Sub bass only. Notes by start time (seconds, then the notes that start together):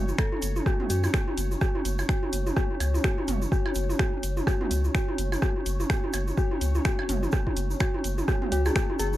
Already playing: F#1
0.42 F#1
0.90 F#2
1.37 F#1
1.85 F#1
2.33 F#1
2.80 C#2
3.28 F#1
3.76 F#1
4.23 F#1
4.71 C#2
5.18 F#1
5.66 F#1
6.14 F#1
6.61 C#2
7.09 F#1
7.57 F#1
8.04 F#1
8.52 C#2
8.99 F#1